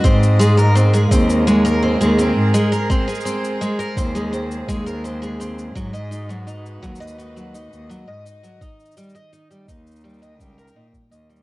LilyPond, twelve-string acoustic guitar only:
\new Staff \with { instrumentName = "Twelve-string acoustic guitar" } { \time 4/4 \key aes \major \tempo 4 = 84 c'8 aes16 bes'16 c'16 aes16 c'8 aes16 bes'16 c'16 aes16 c'8 aes16 bes'16 | c'16 aes16 c'8 aes16 bes'16 c'16 aes16 c'8 aes16 bes'16 c'16 aes16 c'8 | fis16 dis''16 dis'16 fis16 dis'8 fis16 dis''16 dis'16 fis16 dis'8 fis16 dis''16 dis'16 fis16 | ees'8 g16 ees''16 ees'16 g16 ees'8 g16 ees''16 g16 bes'16 ees'16 r16 ees''16 g16 | }